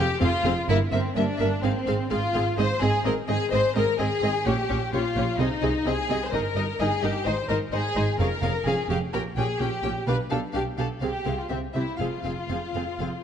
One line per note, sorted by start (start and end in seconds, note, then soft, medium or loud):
0.00 0.21 G4 medium
0.21 0.30 F1 medium
0.21 0.29 F2 medium
0.21 0.29 C4 medium
0.21 0.68 F4 loud
0.21 0.29 G#4 medium
0.21 0.29 F5 medium
0.45 0.53 F1 medium
0.45 0.53 F2 medium
0.45 0.53 C4 medium
0.45 0.53 G#4 medium
0.45 0.53 F5 medium
0.68 0.76 G1 medium
0.68 0.76 G2 medium
0.68 0.77 A#3 medium
0.68 0.77 E4 medium
0.68 0.77 A#4 medium
0.68 0.77 E5 medium
0.92 1.00 G1 medium
0.92 1.00 G2 medium
0.92 1.00 A#3 medium
0.92 1.15 C4 medium
0.92 1.00 A#4 medium
0.92 1.00 E5 medium
1.16 1.24 G1 medium
1.16 1.24 G2 medium
1.16 1.24 A#3 medium
1.16 1.63 D4 medium
1.16 1.24 A#4 medium
1.16 1.24 E5 medium
1.39 1.48 G1 medium
1.39 1.48 G2 medium
1.39 1.47 A#3 medium
1.39 1.47 A#4 medium
1.39 1.47 E5 medium
1.63 1.71 G#1 medium
1.63 1.72 G#2 medium
1.63 1.71 C4 medium
1.63 2.11 C4 medium
1.63 1.71 G#4 medium
1.63 1.71 F5 medium
1.87 1.95 G#1 medium
1.87 1.95 G#2 medium
1.87 1.95 C4 medium
1.87 1.95 G#4 medium
1.87 1.95 F5 medium
2.10 2.19 G#1 medium
2.10 2.19 G#2 medium
2.10 2.18 C4 medium
2.10 2.57 F4 medium
2.10 2.19 G#4 medium
2.10 2.18 F5 medium
2.34 2.42 G#1 medium
2.34 2.43 G#2 medium
2.34 2.42 C4 soft
2.34 2.42 G#4 medium
2.34 2.42 F5 medium
2.58 2.66 G#1 medium
2.58 2.66 G#2 medium
2.58 2.66 C4 medium
2.58 2.66 G#4 medium
2.58 2.81 C5 medium
2.58 2.67 D#5 medium
2.81 2.90 G#1 medium
2.81 2.90 G#2 medium
2.81 2.89 C4 medium
2.81 2.89 G#4 soft
2.81 3.05 G#4 medium
2.81 2.90 D#5 medium
3.05 3.13 G#1 medium
3.05 3.13 G#2 medium
3.05 3.13 C4 medium
3.05 3.13 G#4 medium
3.05 3.13 A#4 medium
3.05 3.13 D#5 medium
3.28 3.36 G#1 medium
3.28 3.36 G#2 medium
3.28 3.36 C4 medium
3.28 3.52 G#4 medium
3.28 3.36 G#4 medium
3.28 3.36 D#5 medium
3.52 3.60 G#1 medium
3.52 3.60 G#2 medium
3.52 3.60 C4 medium
3.52 3.60 G#4 medium
3.52 3.75 C5 medium
3.52 3.60 D#5 medium
3.75 3.84 G#1 medium
3.75 3.83 G#2 medium
3.75 3.83 C4 medium
3.75 3.83 G#4 medium
3.75 3.99 A#4 medium
3.75 3.83 D#5 medium
3.98 4.07 G#1 medium
3.98 4.06 G#2 medium
3.98 4.07 C4 medium
3.98 4.07 G#4 medium
3.98 4.46 G#4 medium
3.98 4.07 D#5 medium
4.22 4.30 G#1 medium
4.22 4.30 G#2 medium
4.22 4.31 C4 medium
4.22 4.31 G#4 medium
4.22 4.31 D#5 medium
4.45 4.54 A#1 medium
4.45 4.53 A#2 medium
4.45 4.54 C#4 medium
4.45 4.54 G4 medium
4.45 4.93 G4 medium
4.45 4.54 C#5 medium
4.68 4.78 A#1 medium
4.68 4.76 A#2 medium
4.68 4.78 C#4 medium
4.68 4.78 G4 medium
4.68 4.77 C#5 medium
4.92 5.01 A#1 medium
4.92 5.00 A#2 medium
4.92 5.01 C#4 medium
4.92 5.39 F4 medium
4.92 5.01 G4 medium
4.92 5.01 C#5 medium
5.16 5.24 A#1 medium
5.16 5.24 A#2 medium
5.16 5.24 C#4 medium
5.16 5.24 G4 medium
5.16 5.24 C#5 medium
5.38 5.47 C2 medium
5.38 5.46 C3 medium
5.38 5.47 C4 medium
5.38 5.87 D#4 medium
5.38 5.48 G#4 medium
5.38 5.48 D#5 medium
5.62 5.71 C2 medium
5.62 5.70 C3 medium
5.62 5.71 C4 medium
5.62 5.71 G#4 medium
5.62 5.71 D#5 medium
5.85 5.94 C2 medium
5.85 5.93 C3 medium
5.85 5.94 C4 medium
5.85 5.94 G#4 medium
5.85 6.26 G#4 medium
5.85 5.94 D#5 medium
6.09 6.17 C2 medium
6.09 6.17 C3 medium
6.09 6.18 C4 medium
6.09 6.18 G#4 soft
6.09 6.18 D#5 medium
6.27 6.33 C5 medium
6.32 6.41 G1 medium
6.32 6.40 G2 medium
6.32 6.42 D#4 medium
6.32 6.42 A#4 medium
6.32 6.80 A#4 medium
6.32 6.41 D#5 medium
6.56 6.64 G1 medium
6.56 6.64 G2 medium
6.56 6.65 D#4 medium
6.56 6.65 A#4 medium
6.56 6.64 D#5 medium
6.79 6.87 G1 medium
6.79 6.87 G2 medium
6.79 6.89 D#4 medium
6.79 7.03 G#4 medium
6.79 6.88 A#4 medium
6.79 6.88 D#5 medium
7.02 7.11 G1 medium
7.02 7.10 G2 medium
7.02 7.11 D#4 medium
7.02 7.26 G4 medium
7.02 7.11 A#4 medium
7.02 7.11 D#5 medium
7.25 7.34 G#1 medium
7.25 7.33 G#2 medium
7.25 7.35 D#4 medium
7.25 7.49 C5 medium
7.25 7.34 C5 medium
7.25 7.34 D#5 medium
7.49 7.57 G#1 medium
7.49 7.57 G#2 medium
7.49 7.58 D#4 medium
7.49 7.57 A#4 medium
7.49 7.57 C5 medium
7.49 7.57 D#5 medium
7.72 7.80 G#1 medium
7.72 7.81 G#2 medium
7.72 7.81 D#4 medium
7.72 8.18 G#4 medium
7.72 7.81 C5 medium
7.72 7.80 D#5 medium
7.95 8.03 G#1 medium
7.95 8.04 G#2 medium
7.95 8.04 D#4 medium
7.95 8.04 C5 soft
7.95 8.04 D#5 soft
8.18 8.26 F1 medium
8.18 8.27 F2 medium
8.18 8.28 C#4 medium
8.18 8.28 G#4 medium
8.18 8.65 A#4 medium
8.18 8.27 F5 medium
8.42 8.50 F1 medium
8.42 8.50 F2 medium
8.42 8.51 C#4 soft
8.42 8.51 G#4 medium
8.42 8.51 F5 medium
8.66 8.74 F1 medium
8.66 8.74 F2 medium
8.66 8.74 C#4 medium
8.66 8.89 G#4 medium
8.66 8.74 G#4 medium
8.66 8.75 F5 medium
8.89 8.97 F1 medium
8.89 8.97 F2 medium
8.89 8.97 C#4 soft
8.89 8.97 G4 medium
8.89 8.97 G#4 medium
8.89 8.98 F5 soft
9.13 9.21 A#1 medium
9.13 9.21 A#2 medium
9.13 9.21 C#4 medium
9.13 9.21 G4 medium
9.13 9.21 A#4 medium
9.13 9.22 G5 medium
9.37 9.45 A#1 medium
9.37 9.45 A#2 medium
9.37 9.45 C#4 medium
9.37 9.45 G4 soft
9.37 9.60 G#4 medium
9.37 9.45 G5 soft
9.60 9.69 A#1 medium
9.60 9.68 A#2 medium
9.60 9.68 C#4 soft
9.60 10.07 G4 medium
9.60 9.68 G4 soft
9.60 9.69 G5 soft
9.84 9.92 A#1 medium
9.84 9.92 A#2 medium
9.84 9.92 C#4 soft
9.84 9.92 G4 soft
9.84 9.92 G5 soft
10.07 10.15 B1 medium
10.07 10.15 B2 medium
10.07 10.16 D4 soft
10.07 10.16 G4 medium
10.07 10.16 B4 medium
10.07 10.15 F5 medium
10.30 10.38 B1 medium
10.30 10.38 B2 soft
10.30 10.38 D4 soft
10.30 10.38 G4 soft
10.30 10.39 A4 medium
10.30 10.38 F5 soft
10.53 10.62 B1 medium
10.53 10.61 B2 soft
10.53 10.62 D4 soft
10.53 10.62 G4 soft
10.53 10.63 G4 medium
10.53 10.62 F5 soft
10.77 10.86 B1 soft
10.77 10.85 B2 medium
10.77 10.85 D4 soft
10.77 10.85 G4 soft
10.77 10.87 A4 medium
10.77 10.85 F5 soft
11.01 11.10 C2 soft
11.01 11.09 C3 medium
11.01 11.10 C4 soft
11.01 11.37 G4 medium
11.01 11.10 G#4 soft
11.01 11.09 F5 soft
11.25 11.33 C2 soft
11.25 11.34 C3 soft
11.25 11.34 C4 soft
11.25 11.34 G#4 soft
11.25 11.34 F5 soft
11.39 11.50 F4 medium
11.49 11.58 C2 soft
11.49 11.58 C3 soft
11.49 11.58 C4 medium
11.49 11.58 C4 soft
11.49 11.58 G4 soft
11.49 11.57 E5 soft
11.74 11.82 C2 soft
11.74 11.83 C3 soft
11.74 11.83 C4 soft
11.74 11.99 E4 medium
11.74 11.83 G4 soft
11.74 11.82 E5 soft
11.99 12.07 F1 soft
11.99 12.07 F2 soft
11.99 12.08 C4 soft
11.99 13.23 F4 medium
11.99 12.08 G#4 soft
11.99 12.07 F5 soft
12.24 12.32 F1 soft
12.24 12.32 F2 soft
12.24 12.33 C4 soft
12.24 12.33 G#4 soft
12.24 12.32 F5 soft
12.49 12.57 F1 soft
12.49 12.57 F2 soft
12.49 12.58 C4 soft
12.49 12.58 G#4 soft
12.49 12.57 F5 soft
12.74 12.82 F1 soft
12.74 12.82 F2 soft
12.74 12.84 C4 soft
12.74 12.83 G#4 soft
12.74 12.82 F5 soft
12.99 13.07 F1 soft
12.99 13.07 F2 soft
12.99 13.09 C4 soft
12.99 13.09 G#4 soft
12.99 13.07 F5 soft